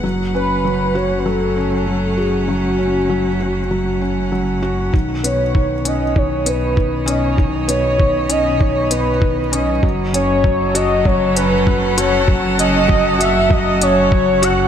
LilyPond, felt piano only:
\new Staff \with { instrumentName = "Felt piano" } { \clef bass \time 4/4 \key fis \dorian \tempo 4 = 98 fis8 cis'8 fis8 fis'8 fis8 cis'8 fis8 fis'8 | fis8 cis'8 fis8 fis'8 fis8 cis'8 fis8 fis'8 | dis8 b8 dis8 cis'8 dis8 b8 dis8 cis'8 | dis8 b8 dis8 cis'8 dis8 b8 dis8 cis'8 |
fis8 cis'8 fis8 fis'8 fis8 cis'8 fis8 fis'8 | fis8 cis'8 fis8 fis'8 fis8 cis'8 fis8 fis'8 | }